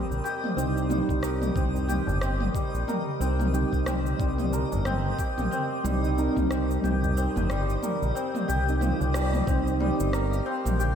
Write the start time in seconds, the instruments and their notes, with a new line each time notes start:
Already playing: synth stab G3 C4 D#4 F4, santur G3 C4 G4 A#4, synth texture D#5
0.11 analog synth bass A#1, tabla tin, cabasa
0.24 santur G4, cabasa
0.44 mid tom
0.56 analog synth bass C2, synth stab G3 C4 D#4, santur C4, cabasa
0.78 cabasa
0.88 synth stab G3 C4 D#4, santur G3, mid tom, cabasa
1.09 analog synth bass C2, kick, cabasa
1.22 santur A#4, cross-stick, cabasa
1.42 mid tom, tabla na, tabla tin, cabasa
1.54 analog synth bass C2, synth stab G3 C4, santur C4, kick, cabasa
1.58 synth stab D#4
1.74 tabla tin, tabla ge, cabasa
1.88 santur G4, mid tom, cabasa
2.07 analog synth bass G1, tabla na, tabla tin, tabla ge, cabasa
2.21 santur C4, cross-stick, cabasa
2.40 mid tom
2.55 santur G3, kick, cabasa
2.74 analog synth bass A#1, tabla tin, cabasa
2.88 santur A#4, mid tom, cabasa
3.19 analog synth bass C2, synth stab G3 C4 D#4, santur C4, cabasa
3.40 mid tom, cabasa
3.52 synth stab G3 C4 D#4, santur G4, cabasa
3.73 analog synth bass C2, kick, cabasa
3.86 santur C4, cross-stick, mid tom, tabla na, cabasa
4.06 cabasa
4.17 analog synth bass C2, synth stab G3 C4, santur G3, kick, cabasa
4.21 synth stab D#4
4.38 mid tom, tabla tin, cabasa
4.53 santur A#4, tabla na, cabasa
4.72 analog synth bass G1, tabla na, tabla tin, tabla ge, cabasa
4.85 santur C4, cross-stick, mid tom, cabasa
5.19 santur G4, kick, cabasa
5.38 analog synth bass A#1, mid tom, tabla tin, cabasa
5.51 santur C4, cabasa
5.84 analog synth bass C2, synth stab G3 C4 D#4, santur G3, mid tom, cabasa
6.04 cabasa
6.17 synth stab G3 C4 D#4, santur A#4, cabasa
6.36 analog synth bass C2, kick, mid tom, cabasa
6.51 santur C4, cross-stick, cabasa
6.70 tabla na, tabla tin, cabasa
6.81 analog synth bass C2, synth stab G3 C4 D#4, santur G4, mid tom, cabasa
7.04 tabla tin, tabla ge, cabasa
7.17 santur C4, cabasa
7.36 analog synth bass G1, mid tom, tabla na, tabla tin, tabla ge, cabasa
7.50 santur G3, cross-stick, cabasa
7.70 cabasa
7.82 santur A#4, mid tom, cabasa
8.02 analog synth bass A#1, tabla tin, cabasa
8.15 santur C4, cabasa
8.35 mid tom, cabasa
8.48 analog synth bass C2, santur G4, tabla na, cabasa
8.67 synth stab G3 C4 D#4, cabasa
8.81 synth stab G3 C4 F4, santur C4, mid tom, cabasa
9.00 analog synth bass C2, tabla na, cabasa
9.14 santur G3, cross-stick, tabla na, cabasa
9.33 mid tom, cabasa
9.46 analog synth bass C2, synth stab G3 C4, santur C4, synth texture F5, kick, cabasa
9.50 synth stab D#4
9.67 cabasa
9.80 santur G3, mid tom
10.00 analog synth bass G1, cabasa
10.13 santur A#4, cross-stick, cabasa
10.33 cabasa
10.46 santur C4
10.65 analog synth bass A#1, mid tom, cabasa
10.79 santur G4, cabasa